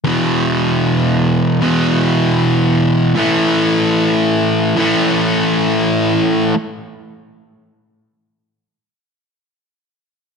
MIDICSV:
0, 0, Header, 1, 2, 480
1, 0, Start_track
1, 0, Tempo, 500000
1, 9950, End_track
2, 0, Start_track
2, 0, Title_t, "Distorted electric guitar"
2, 0, Program_c, 0, 30
2, 42, Note_on_c, 0, 40, 54
2, 61, Note_on_c, 0, 47, 57
2, 72, Note_on_c, 0, 52, 59
2, 1533, Note_off_c, 0, 40, 0
2, 1543, Note_off_c, 0, 47, 0
2, 1546, Note_on_c, 0, 40, 55
2, 1562, Note_on_c, 0, 47, 66
2, 1573, Note_off_c, 0, 52, 0
2, 1577, Note_on_c, 0, 52, 67
2, 3027, Note_off_c, 0, 47, 0
2, 3030, Note_off_c, 0, 40, 0
2, 3031, Note_on_c, 0, 45, 65
2, 3047, Note_off_c, 0, 52, 0
2, 3051, Note_on_c, 0, 52, 73
2, 3065, Note_on_c, 0, 57, 69
2, 4555, Note_off_c, 0, 45, 0
2, 4572, Note_off_c, 0, 57, 0
2, 4574, Note_on_c, 0, 45, 73
2, 4588, Note_off_c, 0, 52, 0
2, 4592, Note_on_c, 0, 52, 71
2, 4606, Note_on_c, 0, 57, 78
2, 6269, Note_off_c, 0, 45, 0
2, 6278, Note_off_c, 0, 52, 0
2, 6285, Note_off_c, 0, 57, 0
2, 9950, End_track
0, 0, End_of_file